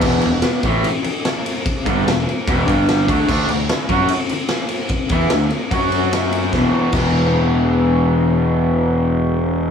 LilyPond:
<<
  \new Staff \with { instrumentName = "Overdriven electric guitar" } { \clef bass \time 4/4 \key d \lydian \tempo 4 = 148 <e, b, e>8 <e, b,>8 r8 <a, e a>8 r2 | r8 <g, d g>8 <e, b,>8 r8 <e, b, e>8 <g, d g>4 <d a d'>8 | <d a d'>8 <d a>8 r8 <fis cis' fis'>8 r2 | r8 <e b e'>8 <d a>8 r8 <fis cis' fis'>2 |
<e, b, e>8 r8 <e, b, e>2.~ | <e, b, e>1 | }
  \new Staff \with { instrumentName = "Fingered electric bass" } { \clef bass \time 4/4 \key d \lydian e,,8 e,,8 r8 a,,8 r2 | r8 g,,8 e,,8 r8 e,,8 g,,4 d,8 | d,8 d,8 r8 fis,8 r2 | r8 e,8 d,8 r8 fis,2 |
e,,8 r8 e,,2.~ | e,,1 | }
  \new DrumStaff \with { instrumentName = "Drums" } \drummode { \time 4/4 <cymc bd>8 cymr8 <cymr sn>8 <bd cymr>8 cymr8 cymr8 <cymr sn>8 cymr8 | <bd cymr>8 <bd cymr>8 <cymr sn>8 cymr8 <bd cymr>8 <bd cymr>8 <cymr sn>8 <bd cymr>8 | <cymc bd>8 cymr8 <cymr sn>8 <bd cymr>8 cymr8 cymr8 <cymr sn>8 cymr8 | <bd cymr>8 <bd cymr>8 <cymr sn>8 cymr8 <bd cymr>8 cymr8 <cymr sn>8 cymr8 |
<bd sn>4 <cymc bd>4 r4 r4 | r4 r4 r4 r4 | }
>>